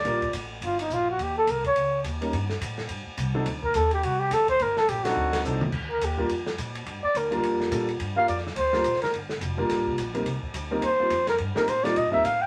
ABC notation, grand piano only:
X:1
M:4/4
L:1/8
Q:"Swing" 1/4=212
K:Gm
V:1 name="Grand piano"
[G,B,DFB] z6 z | z6 z [G,B,_DEB] | z6 z [^F,CDEA] | z8 |
z3 [^F,CDEA]3 [F,CDEA] z | z3 [G,B,DFB] z4 | z3 [G,B,DFB]3 [G,B,DFA] z | z [G,B,DFB] z3 [G,B,DFB] z2 |
z3 [G,B,DFB]3 z [G,B,CEB] | z3 [G,B,CEB] z [G,B,CEF] z2 | z [G,B,CEB] z [G,B,CEF] z [G,B,CEB] z2 |]